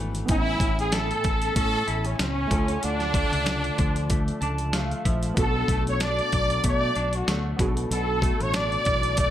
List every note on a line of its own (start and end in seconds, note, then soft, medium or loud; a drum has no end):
0.00 0.23 G#1 medium
0.00 0.29 B2 medium
0.00 2.54 E3 medium
0.00 0.62 A3 medium
0.00 0.36 D4 medium
0.15 closed hi-hat medium
0.26 0.54 A1 loud
0.26 2.58 A2 medium
0.26 2.46 B3 medium
0.26 0.35 C4 soft
0.26 2.47 E4 medium
0.26 kick loud
0.26 closed hi-hat medium
0.31 2.50 C#4 medium
0.31 0.76 E4 loud
0.31 2.48 G#5 medium
0.60 1.11 A1 medium
0.60 1.56 C#4 medium
0.60 kick medium
0.60 closed hi-hat medium
0.79 0.95 G#4 medium
0.79 closed hi-hat soft
0.92 1.86 E4 medium
0.92 1.55 A4 loud
0.92 snare loud
0.92 closed hi-hat medium
1.11 closed hi-hat soft
1.24 1.50 A1 medium
1.24 kick medium
1.24 closed hi-hat medium
1.42 closed hi-hat soft
1.56 1.82 A2 loud
1.56 2.19 C#4 medium
1.56 2.07 A4 loud
1.56 kick medium
1.56 closed hi-hat medium
1.87 2.13 A1 medium
1.87 2.58 E4 medium
1.87 closed hi-hat medium
2.05 2.19 C#4 medium
2.05 closed hi-hat soft
2.19 2.45 C#2 loud
2.19 2.85 C#4 medium
2.19 2.59 C#4 medium
2.19 snare loud
2.19 closed hi-hat medium
2.47 2.77 D2 medium
2.47 2.83 D3 medium
2.47 4.99 A3 medium
2.47 5.01 F4 medium
2.47 kick medium
2.47 closed hi-hat medium
2.52 5.02 A4 medium
2.68 closed hi-hat medium
2.83 3.23 D2 medium
2.83 5.38 D3 medium
2.83 4.74 D4 loud
2.83 closed hi-hat medium
3.00 snare soft
3.00 closed hi-hat soft
3.14 4.10 A3 medium
3.14 kick medium
3.14 closed hi-hat medium
3.32 3.69 C#2 medium
3.32 closed hi-hat soft
3.46 4.42 D4 medium
3.46 snare loud
3.46 closed hi-hat medium
3.64 closed hi-hat soft
3.77 4.30 D2 medium
3.77 5.04 F3 soft
3.77 kick medium
3.77 closed hi-hat medium
3.96 closed hi-hat soft
4.10 4.74 A3 medium
4.10 kick medium
4.10 closed hi-hat medium
4.28 closed hi-hat soft
4.41 4.92 C#2 medium
4.41 6.02 D4 medium
4.41 4.71 A5 medium
4.41 closed hi-hat medium
4.58 closed hi-hat soft
4.73 5.70 A3 medium
4.73 5.03 F5 medium
4.73 snare loud
4.73 closed hi-hat medium
4.91 closed hi-hat soft
5.05 5.31 A#1 medium
5.05 5.44 F3 medium
5.05 5.35 E5 medium
5.05 kick medium
5.05 closed hi-hat medium
5.23 closed hi-hat medium
5.34 5.63 B1 loud
5.34 7.53 B3 medium
5.34 7.54 D4 medium
5.34 7.55 F#4 medium
5.34 kick loud
5.34 closed hi-hat medium
5.38 7.59 B2 medium
5.38 5.84 A4 medium
5.38 7.56 A4 medium
5.68 6.19 B1 medium
5.68 6.64 A3 medium
5.68 kick medium
5.68 closed hi-hat medium
5.87 6.04 C#5 medium
5.87 closed hi-hat soft
6.00 6.96 D4 medium
6.00 6.65 D5 loud
6.00 snare medium
6.00 closed hi-hat medium
6.19 closed hi-hat soft
6.32 6.58 B1 medium
6.32 7.67 F#3 medium
6.32 kick medium
6.32 closed hi-hat medium
6.50 closed hi-hat soft
6.64 6.89 B2 loud
6.64 7.28 A3 medium
6.64 7.18 D5 loud
6.64 kick medium
6.64 closed hi-hat medium
6.96 7.21 B1 medium
6.96 8.53 D4 medium
6.96 closed hi-hat medium
7.13 7.46 F#4 medium
7.13 closed hi-hat medium
7.28 7.53 D2 medium
7.28 7.96 A3 medium
7.28 snare loud
7.28 closed hi-hat medium
7.56 7.85 B1 medium
7.56 7.91 B2 medium
7.56 9.30 B3 medium
7.56 9.30 D4 medium
7.56 9.30 F#4 medium
7.56 kick loud
7.56 closed hi-hat medium
7.61 7.67 G#4 medium
7.68 9.30 A4 medium
7.77 closed hi-hat medium
7.91 8.30 B1 loud
7.91 9.30 B2 medium
7.91 8.44 A4 medium
7.91 closed hi-hat medium
8.22 9.18 A3 medium
8.22 kick medium
8.22 closed hi-hat medium
8.40 8.76 A1 medium
8.40 8.57 C#5 medium
8.40 closed hi-hat soft
8.54 9.30 D4 medium
8.54 9.18 D5 loud
8.54 snare loud
8.54 closed hi-hat medium
8.72 closed hi-hat soft
8.85 9.30 B1 medium
8.85 9.30 E3 medium
8.85 kick loud
8.85 closed hi-hat medium
9.03 closed hi-hat medium
9.17 9.30 A3 medium
9.17 9.30 D5 loud
9.17 kick medium
9.17 closed hi-hat loud